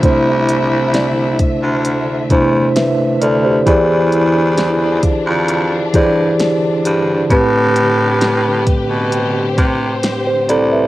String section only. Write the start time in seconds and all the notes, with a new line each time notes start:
Already playing: E5
0.03 D3 A3
3.66 D3 E3 D4
7.31 G4 B4
9.12 C5